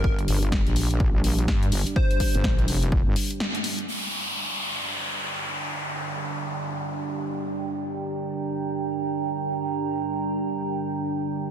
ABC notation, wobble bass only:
X:1
M:4/4
L:1/16
Q:"Swing 16ths" 1/4=125
K:Gm
V:1 name="Wobble bass" clef=bass
G,,,2 G,,,3 B,,,3 B,,,4 G,,2 G,,, z | z3 G,,, B,,,2 F,,,3 G,,, z6 | z16 | z16 |
z16 | z16 |]